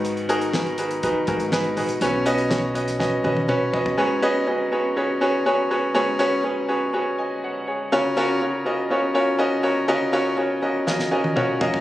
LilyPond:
<<
  \new Staff \with { instrumentName = "Upright piano" } { \time 4/4 \key cis \mixolydian \tempo 4 = 122 << { r1 | r1 | r1 | r2 r8 <dis'' gis''>8 <cis'' fis''>8 <gis' cis''>8~ |
<gis' cis''>8 r2. r8 | r2 r8 gis''8 fis''8 eis''8 | } \\ { <dis' fis' gis' b'>8 <dis' fis' gis' ais'>8 <dis' fis' gis' b'>8 <dis' fis' gis' b'>8 <dis' fis' gis' b'>8 <dis' fis' gis' ais'>8 <dis' fis' gis' b'>8 <dis' fis' gis' b'>8 | <cis' fis' b' cis''>8 <cis' fis' b' dis''>8 <cis' fis' b' cis''>8 <cis' fis' b' dis''>8 <cis' fis' b' dis''>8 <cis' fis' b' dis''>8 <cis' fis' b' cis''>8 <cis' fis' b' dis''>8 | <cis' fis' gis' b' cis''>8 <cis' fis' gis' b' dis''>8 <cis' fis' gis' b' dis''>8 <cis' fis' gis' b' cis''>8 <cis' fis' gis' b' cis''>8 <cis' fis' gis' b' cis''>8 <cis' fis' gis' b' cis''>8 <cis' fis' gis' b' cis''>8 | <cis' fis' gis' b' cis''>8 <cis' fis' gis' b' cis''>8 <cis' fis' gis' b' cis''>8 <cis' fis' gis' b' cis''>8 <cis' fis' gis' b' cis''>8 r4. |
<cis' eis' fis' ais' cis''>8 <cis' eis' fis' ais' cis''>8 <cis' eis' fis' ais' cis''>8 <cis' eis' fis' ais' dis''>8 <cis' eis' fis' ais' cis''>8 <cis' eis' fis' ais' cis''>8 <cis' eis' fis' ais' dis''>8 <cis' eis' fis' ais' cis''>8 | <cis' eis' fis' ais' dis''>8 <cis' eis' fis' ais' cis''>8 <cis' eis' fis' ais' cis''>8 <cis' eis' fis' ais' dis''>8 <cis' eis' fis' ais' dis''>8 <cis' eis' fis' ais' dis''>8 <cis' eis' fis' ais' cis''>8 <cis' eis' fis' ais' dis''>8 | } >> }
  \new Staff \with { instrumentName = "Upright piano" } { \clef bass \time 4/4 \key cis \mixolydian <gis, dis>4 r2. | <b, fis>4. r2 r8 | gis,4. r2 r8 | gis,4. r2 r8 |
cis4. r2 r8 | cis4. r2 r8 | }
  \new Staff \with { instrumentName = "Upright bass" } { \clef bass \time 4/4 \key cis \mixolydian gis,,2~ gis,,8 gis,,4 ais,,8 | b,,2~ b,,8 b,,4. | r1 | r1 |
r1 | r1 | }
  \new DrumStaff \with { instrumentName = "Drums" } \drummode { \time 4/4 hh16 hh16 hh16 hh16 sn16 hh16 hh16 hh16 <hh bd>8 <hh bd>16 hh16 sn16 hh16 hho16 hh16 | hh8 hh16 hh16 sn8 hh16 <hh sn>16 <bd sn>8 tommh16 tommh16 toml8 tomfh16 tomfh16 | r4 r4 r4 r4 | r4 r4 r4 r4 |
r4 r4 r4 r4 | r4 r4 sn16 sn8 tommh16 toml8 tomfh16 tomfh16 | }
>>